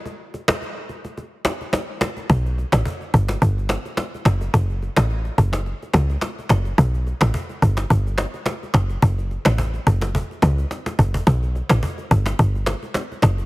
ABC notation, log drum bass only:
X:1
M:4/4
L:1/16
Q:"Swing 16ths" 1/4=107
K:F#phr
V:1 name="Log drum bass" clef=bass
z16 | B,,,3 A,,, z2 G,,,2 G,,,3 z3 F,,,2 | F,,,3 A,,,3 F,,,3 z C,,2 z2 F,,,2 | B,,,3 A,,, z2 G,,,2 G,,,3 z3 F,,,2 |
F,,,3 A,,,3 F,,,3 z C,,2 z2 F,,,2 | B,,,3 A,,, z2 G,,,2 G,,,3 z3 F,,,2 |]